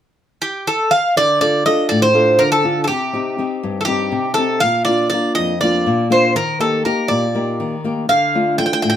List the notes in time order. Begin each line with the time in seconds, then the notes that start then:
0.42 G4
0.67 A4
0.91 F5
1.16 D3 D5
1.41 D4 F4 A4 D5
1.66 D4 F4 A4 D#5
1.89 A2 D5
2.02 C5
2.14 D4 F4 A4
2.39 D3 A#4
2.52 A4
2.64 D4 F4 A4
2.84 G4 A4
2.89 C3
3.13 C4 D#4 G4
3.38 C4 D#4 G4
3.63 G2
3.81 A4
3.85 C4 D#4 G4
4.12 C3
4.34 C4 D#4 G4 A4
4.60 A#2 F5
4.85 A#3 D4 F4 D5
5.10 A#3 D4 D5
5.14 F4
5.35 F2 D#5
5.61 A#3 D4 F4 D5
5.86 A#2
6.10 A#3 D4 F4 C5
6.36 D#3 A#4
6.60 A#3 D#4 G4 A4
6.85 A#3 D#4 G4 A#4
7.08 A#2 D5
7.35 A#3 D#4 G4
7.60 D#3
7.84 A#3 D#4 G4
8.09 D3 F5
8.35 A3 D4 F4
8.58 A3 D4 F4 G5
8.66 G5
8.73 G5
8.82 A2 G5
8.90 G5